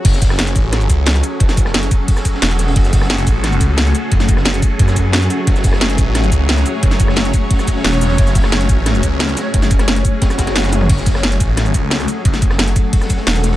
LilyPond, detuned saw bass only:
\new Staff \with { instrumentName = "Detuned saw bass" } { \clef bass \time 4/4 \key fis \minor \tempo 4 = 177 fis,,4. a,,4 cis,4 r8 | fis,,4. r4. e,,4 | fis,,4. a,,4 cis,4 r8 | fis,,4. r8 fis,4. r8 |
fis,,4. a,,4 cis,4 r8 | fis,,4. r4. e,,4 | fis,,4. a,,4 cis,4 r8 | fis,,4. r4 fis,,4. |
fis,,4. a,,4 cis,4 r8 | fis,,4. r4. e,,4 | }